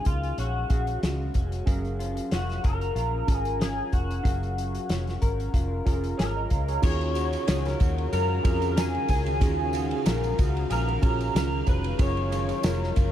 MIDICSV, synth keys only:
0, 0, Header, 1, 2, 480
1, 0, Start_track
1, 0, Tempo, 645161
1, 1243, Time_signature, 4, 2, 24, 8
1, 9760, End_track
2, 0, Start_track
2, 0, Title_t, "Synth keys"
2, 0, Program_c, 0, 88
2, 0, Control_c, 0, 64, 127
2, 0, Note_on_c, 0, 54, 60
2, 0, Note_on_c, 0, 61, 61
2, 0, Note_on_c, 0, 65, 60
2, 0, Note_on_c, 0, 66, 59
2, 0, Note_on_c, 0, 68, 71
2, 0, Note_on_c, 0, 77, 59
2, 191, Note_off_c, 0, 61, 0
2, 195, Note_off_c, 0, 77, 0
2, 198, Note_off_c, 0, 54, 0
2, 201, Note_off_c, 0, 68, 0
2, 516, Note_on_c, 0, 61, 66
2, 519, Note_on_c, 0, 77, 65
2, 527, Note_off_c, 0, 66, 0
2, 527, Note_on_c, 0, 66, 59
2, 532, Note_on_c, 0, 68, 71
2, 1173, Note_off_c, 0, 61, 0
2, 1175, Note_off_c, 0, 77, 0
2, 1178, Note_off_c, 0, 66, 0
2, 1181, Note_off_c, 0, 68, 0
2, 1234, Note_on_c, 0, 61, 78
2, 1239, Note_on_c, 0, 77, 71
2, 1246, Note_on_c, 0, 68, 70
2, 1249, Note_on_c, 0, 70, 84
2, 1252, Control_c, 0, 64, 0
2, 1254, Note_off_c, 0, 65, 0
2, 1362, Control_c, 0, 64, 127
2, 2110, Note_off_c, 0, 61, 0
2, 2113, Note_off_c, 0, 77, 0
2, 2116, Note_off_c, 0, 68, 0
2, 2118, Note_off_c, 0, 70, 0
2, 2435, Note_on_c, 0, 61, 67
2, 2440, Note_on_c, 0, 65, 63
2, 2446, Note_on_c, 0, 68, 62
2, 2454, Note_on_c, 0, 70, 75
2, 3093, Note_off_c, 0, 61, 0
2, 3095, Note_off_c, 0, 65, 0
2, 3099, Note_off_c, 0, 68, 0
2, 3103, Note_off_c, 0, 70, 0
2, 3149, Note_on_c, 0, 61, 68
2, 3155, Note_on_c, 0, 77, 61
2, 3162, Note_on_c, 0, 68, 55
2, 3166, Note_on_c, 0, 70, 75
2, 4028, Note_off_c, 0, 61, 0
2, 4031, Note_off_c, 0, 77, 0
2, 4034, Note_off_c, 0, 68, 0
2, 4037, Note_off_c, 0, 70, 0
2, 4354, Note_on_c, 0, 61, 79
2, 4358, Note_on_c, 0, 65, 75
2, 4367, Note_on_c, 0, 68, 67
2, 4369, Note_on_c, 0, 70, 84
2, 4590, Note_off_c, 0, 68, 0
2, 4594, Note_on_c, 0, 73, 58
2, 4599, Note_on_c, 0, 68, 51
2, 4607, Note_off_c, 0, 70, 0
2, 4725, Note_off_c, 0, 73, 0
2, 4727, Note_off_c, 0, 68, 0
2, 4733, Note_on_c, 0, 75, 61
2, 4737, Note_on_c, 0, 70, 51
2, 4831, Note_off_c, 0, 70, 0
2, 4836, Note_on_c, 0, 77, 53
2, 4838, Note_off_c, 0, 75, 0
2, 4840, Note_on_c, 0, 70, 51
2, 4966, Note_off_c, 0, 77, 0
2, 4968, Note_off_c, 0, 70, 0
2, 4973, Note_on_c, 0, 73, 63
2, 4976, Note_on_c, 0, 68, 48
2, 5013, Note_off_c, 0, 61, 0
2, 5015, Note_off_c, 0, 65, 0
2, 5073, Note_on_c, 0, 61, 75
2, 5075, Note_on_c, 0, 65, 69
2, 5080, Note_off_c, 0, 68, 0
2, 5085, Note_on_c, 0, 66, 67
2, 5089, Note_on_c, 0, 68, 82
2, 5096, Control_c, 0, 64, 0
2, 5203, Note_off_c, 0, 73, 0
2, 5230, Control_c, 0, 64, 127
2, 5950, Note_off_c, 0, 61, 0
2, 5951, Note_off_c, 0, 65, 0
2, 5956, Note_off_c, 0, 66, 0
2, 5958, Note_off_c, 0, 68, 0
2, 6271, Note_on_c, 0, 61, 76
2, 6276, Note_on_c, 0, 65, 70
2, 6282, Note_on_c, 0, 66, 69
2, 6290, Note_on_c, 0, 68, 85
2, 6931, Note_off_c, 0, 61, 0
2, 6934, Note_off_c, 0, 65, 0
2, 6937, Note_off_c, 0, 66, 0
2, 6941, Note_off_c, 0, 68, 0
2, 6996, Note_on_c, 0, 61, 73
2, 7003, Note_on_c, 0, 65, 68
2, 7009, Note_on_c, 0, 66, 69
2, 7014, Note_on_c, 0, 68, 84
2, 7871, Note_off_c, 0, 61, 0
2, 7875, Note_off_c, 0, 65, 0
2, 7878, Note_off_c, 0, 66, 0
2, 7880, Note_off_c, 0, 68, 0
2, 8197, Note_on_c, 0, 61, 80
2, 8201, Note_on_c, 0, 65, 67
2, 8211, Note_on_c, 0, 66, 69
2, 8215, Note_on_c, 0, 68, 79
2, 8854, Note_off_c, 0, 61, 0
2, 8856, Note_off_c, 0, 65, 0
2, 8861, Note_off_c, 0, 66, 0
2, 8863, Note_off_c, 0, 68, 0
2, 8918, Note_on_c, 0, 61, 70
2, 8921, Note_on_c, 0, 65, 68
2, 8929, Note_on_c, 0, 68, 71
2, 8934, Note_on_c, 0, 70, 80
2, 8935, Control_c, 0, 64, 0
2, 9047, Control_c, 0, 64, 127
2, 9760, Note_off_c, 0, 61, 0
2, 9760, Note_off_c, 0, 65, 0
2, 9760, Note_off_c, 0, 68, 0
2, 9760, Note_off_c, 0, 70, 0
2, 9760, End_track
0, 0, End_of_file